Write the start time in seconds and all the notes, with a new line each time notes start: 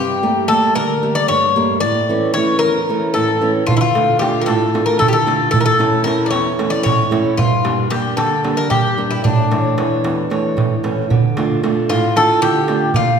Already playing: G2 G4
0.23 G3 A3 A#3
0.48 G3 A3 A#3 A4
0.75 D3 A#4
1.03 G3 A3 A#3
1.15 D5
1.28 G2 C#5
1.56 G3 A3 A#3
1.80 A2 D5
2.09 E3 A3 C#4
2.34 E3 A3 C#4 C#5
2.59 A#4
2.63 E2
2.89 E3 A3 C#4
3.14 A2 A4
3.41 E3 A3 C#4
3.66 D3 F4, darbuka dum
3.77 E4
3.81 F4
3.95 A3 D4 F4, darbuka tek
4.19 A3 D4 F4 G4, darbuka tek
4.36 darbuka tek
4.41 A#4
4.46 A2 A4, darbuka tek
4.62 darbuka tek
4.74 A3 D4 F4, darbuka tek
4.86 A#4
4.99 D3 A4, darbuka tek, darbuka dum
5.08 G4
5.13 A4, darbuka tek
5.26 A3 D4 F4, darbuka tek
5.51 A2 A4, darbuka dum
5.61 A#4
5.66 A4
5.79 A3 C#4 E4, darbuka tek
6.04 A3 C#4 E4 A#4, darbuka tek
6.20 darbuka tek
6.26 D5
6.30 E2 C#5, darbuka tek
6.46 darbuka tek
6.59 A3 C#4 E4, darbuka tek
6.70 D5
6.83 A2 C#5, darbuka tek, darbuka dum
6.99 darbuka tek
7.11 A3 C#4 E4, darbuka tek
7.26 darbuka tek
7.37 G2 F4, darbuka dum
7.64 G3 A#3 D4, darbuka tek
7.90 G3 A#3 D4 G4, darbuka tek
8.17 D3 A4, darbuka tek
8.31 darbuka tek
8.44 G3 A#3 D4, darbuka tek
8.57 A#4
8.70 G2 G4, darbuka tek, darbuka dum
8.85 darbuka tek
8.97 G3 A#3 D4
9.11 E4, darbuka tek
9.24 A2 D4, darbuka dum
9.38 darbuka tek
9.51 E3 A3 C#5, darbuka tek
9.65 darbuka tek
9.77 E3 A3 C#5, darbuka tek
10.04 E2, darbuka tek
10.30 E3 A3 C#5, darbuka tek
10.57 A2, darbuka tek, darbuka dum
10.83 E3 A3 C#4, darbuka tek
10.98 darbuka tek
11.10 D3, darbuka dum
11.37 A3 D4 F4, darbuka tek
11.63 A3 D4 F4, darbuka tek
11.90 A2 F4, darbuka tek
12.16 A3 D4 F4 A4, darbuka tek
12.30 darbuka tek
12.42 D3 G4, darbuka tek
12.55 darbuka tek
12.68 A3 D4 F4, darbuka tek
12.94 A#2 F4, darbuka dum